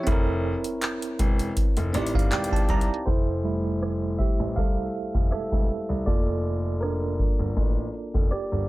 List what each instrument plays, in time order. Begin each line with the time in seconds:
Already playing: tine electric piano C#5
0.03 grand piano F1, tine electric piano C4, kick, closed hi-hat
0.08 tine electric piano E4
0.12 tine electric piano A#4
0.64 closed hi-hat
0.82 clap, closed hi-hat
1.02 closed hi-hat
1.19 grand piano E1, kick, closed hi-hat
1.39 closed hi-hat
1.57 kick, closed hi-hat
1.77 grand piano F1, closed hi-hat
1.93 grand piano A1, tine electric piano C4 D#4 D5, closed hi-hat
1.97 tine electric piano G4
2.02 tine electric piano E4
2.07 closed hi-hat
2.14 grand piano G1, tine electric piano F5, kick
2.19 closed hi-hat
2.31 grand piano E1, tine electric piano G4 D5 G5, clap, closed hi-hat
2.44 closed hi-hat
2.52 tine electric piano A5, kick
2.56 closed hi-hat
2.69 grand piano C2, tine electric piano A#5, kick, closed hi-hat
2.81 closed hi-hat
2.94 closed hi-hat
3.06 grand piano F1, tine electric piano E4 C5, kick, closed hi-hat
3.19 closed hi-hat
3.31 closed hi-hat
3.44 tine electric piano G3 A3 E4
3.64 closed hi-hat
3.82 cross-stick, closed hi-hat
4.02 closed hi-hat
4.19 grand piano A1, tine electric piano G4 E5, kick, closed hi-hat
4.39 grand piano A1, closed hi-hat
4.56 grand piano C2, tine electric piano A4 F5, kick, closed hi-hat
4.77 closed hi-hat
4.94 closed hi-hat
5.14 grand piano F1, kick, closed hi-hat
5.31 grand piano E1, tine electric piano A4 E5, cross-stick, closed hi-hat
5.52 grand piano E1, kick, closed hi-hat
5.69 closed hi-hat
5.89 grand piano C2
6.06 grand piano F1, tine electric piano A#3 F4 A4 D5, kick, closed hi-hat
6.64 closed hi-hat
6.81 tine electric piano D4 A#4, cross-stick, closed hi-hat
7.02 closed hi-hat
7.19 grand piano G1, kick, closed hi-hat
7.39 grand piano G1, closed hi-hat
7.57 grand piano A1, kick, closed hi-hat
7.77 closed hi-hat
7.94 closed hi-hat
8.14 grand piano F1, kick, closed hi-hat
8.31 tine electric piano G4 D5, cross-stick, closed hi-hat
8.52 grand piano G1, closed hi-hat